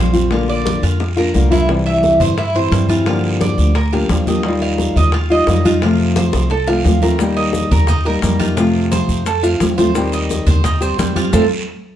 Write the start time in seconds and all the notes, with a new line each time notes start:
Already playing: A#1 F3 C5
0.00 G3 C4 F4
0.13 G3 C4 F4, high bongo, high conga, short guiro
0.31 D3 A#3 D4 F4, high bongo, high conga, long guiro
0.48 D5, high bongo, high conga
0.65 high bongo, high conga, short guiro
0.82 F2 F4, high conga, short guiro
1.00 muted nylon-string guitar stroke, high bongo, high conga, long guiro
1.16 A#3 D4 F4 A#4, high bongo, high conga
1.34 C2 D3 A#3 D4 F4, low bongo, high conga, short guiro
1.51 A#3 D4 E4 F4, low bongo, high conga, short guiro
1.68 C3 E3 G3 C4 E4, high bongo, high conga, long guiro
1.86 E5, high bongo, high conga
2.03 high bongo, high conga, short guiro
2.20 G2 C5, low conga, short guiro
2.37 E4, muted nylon-string guitar stroke, high bongo, high conga, long guiro
2.55 E3 G3 C4 E4 C5, high bongo, high conga
2.72 G2 E3 G3 C4 E4, high bongo, low bongo, high conga, short guiro
2.89 E3 G3 C4 E4 F4, high bongo, high conga, short guiro
3.06 D3 F3 A#3 D4 F4 G4, high bongo, high conga, long guiro
3.24 high bongo, high conga
3.41 D5, high bongo, high conga, short guiro
3.58 D2, short guiro
3.75 A#4, muted nylon-string guitar stroke, high bongo, high conga, long guiro
3.92 F3 A#3 D4 G4 F5, high bongo, high conga
4.09 D#2 F3 A#3 D4 G4, high bongo, low bongo, high conga, short guiro
4.26 F3 A#3 D4 G4 D#5, high bongo, high conga, short guiro
4.43 D#3 G3 D#4, high bongo, high conga, long guiro
4.48 F4
4.61 F5, high bongo, high conga
4.78 high bongo, high conga, short guiro
4.96 D#2 D#5, low conga, short guiro
5.12 F4, muted nylon-string guitar stroke, high bongo, high conga, long guiro
5.30 G3 D#4 F4 D#5, high bongo, high conga
5.47 F2 D#3 G3 D#4 F4, high bongo, low bongo, high conga, short guiro
5.65 G3 D#4 F4, high bongo, high conga, short guiro
5.82 C3 F3 A3 C4 F4, high bongo, high conga, long guiro
5.99 high bongo, high conga
6.16 C5, high bongo, high conga, short guiro
6.33 C2, high bongo, high conga, short guiro
6.50 A4, muted nylon-string guitar stroke, high bongo, high conga, long guiro
6.67 F3 A3 C4 F4 F5, low bongo, high conga
6.85 D#2 F3 A3 C4 F4, low bongo, high conga, short guiro
7.02 F3 A3 C4 F4 A#4, low bongo, high conga, short guiro
7.19 D#3 G3 A#3 D#4 G4, high bongo, high conga, long guiro, maracas
7.37 D#5, high bongo, high conga
7.53 high bongo, high conga, short guiro, maracas
7.71 D#2 A#4, low conga, short guiro, maracas
7.87 D#4, muted nylon-string guitar stroke, high bongo, high conga, low conga, long guiro, maracas
8.05 G3 A#3 D#4 G4 A#4, high bongo, high conga
8.22 F2 G3 A#3 D#4 G4, high bongo, low bongo, high conga, short guiro, maracas
8.39 G3 A#3 D#4 F4 G4, high bongo, high conga, short guiro, maracas
8.56 C3 F3 A3 C4 F4, high bongo, long guiro, maracas
8.74 high bongo, high conga
8.91 C5, high bongo, high conga, short guiro, maracas
9.09 F2, high conga, short guiro, maracas
9.26 A4, muted nylon-string guitar stroke, high bongo, high conga, long guiro, maracas
9.43 F3 A3 C4 F4 F5, high bongo, high conga, maracas
9.60 D#2 F3 A3 C4 F4, high bongo, low bongo, high conga, short guiro, maracas
9.78 F3 A3 C4 F4 C5, high bongo, high conga, short guiro, maracas
9.94 D#3 G3 C4, high bongo, high conga, long guiro, maracas
9.98 G4
10.13 D#5, high bongo, high conga, maracas
10.29 high bongo, high conga, short guiro, maracas
10.46 D#2 C5, low conga, short guiro, maracas
10.64 D#4, muted nylon-string guitar stroke, high bongo, high conga, low conga, long guiro, maracas
10.81 G3 C4 G4 C5, high bongo, high conga, maracas
10.97 F2 D#3 G3 C4 G4, high bongo, low bongo, high conga, short guiro, maracas
11.15 G3 C4 F4 G4, high bongo, high conga, short guiro, maracas
11.33 F2 F3 A3 C4 A4 C5 F5, low bongo, high conga, long guiro, maracas